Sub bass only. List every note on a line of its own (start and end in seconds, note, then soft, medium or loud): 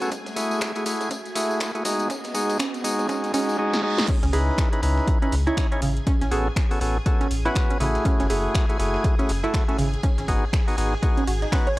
4.23 4.29 C#2 loud
4.33 4.51 C#2 loud
4.83 5.00 C#2 loud
5.32 5.50 C#2 medium
5.82 5.99 A1 loud
6.21 6.28 A1 loud
6.32 6.49 A1 loud
6.81 6.98 A1 loud
7.31 7.48 A1 medium
7.80 7.98 A1 loud
8.20 8.26 F#1 loud
8.30 8.47 F#1 loud
8.79 8.97 F#1 loud
9.29 9.46 F#1 medium
9.79 9.96 G#1 loud
10.18 10.25 G#1 loud
10.28 10.46 G#1 medium
10.78 10.95 G#1 loud
11.27 11.45 G#1 medium